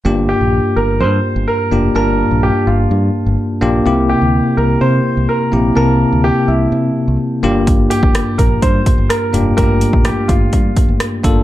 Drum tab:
HH |----------------|----------------|----------------|----------------|
SD |----------------|----------------|----------------|----------------|
BD |----------------|----------------|----------------|----------------|

HH |x-x-x-x-x-x-x-x-|x-x-x-x-x-x-x-x-|
SD |----r-------r---|----r-------r---|
BD |o--o--o-o-o-----|o--o--o-o-o---o-|